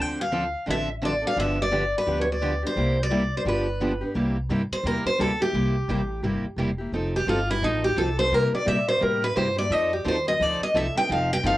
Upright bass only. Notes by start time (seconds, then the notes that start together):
Already playing: D2
0.67 A1
1.37 G1
2.07 D2
2.76 C2
3.45 G1
4.15 C2
4.49 G2
4.71 muted upright bass stroke
4.84 E2
5.05 muted upright bass stroke
5.19 D2
5.53 C2
5.88 A1
6.22 G1
6.43 muted upright bass stroke
6.56 E1
6.92 F1
7.26 G1
7.62 A1
7.96 C2
8.32 C3
8.53 muted upright bass stroke
8.67 A#2
9.02 A2
9.36 G2
9.70 F2
10.05 D#2
10.40 D2
10.61 muted upright bass stroke
10.74 C2
10.95 muted upright bass stroke
11.09 F1
11.44 G1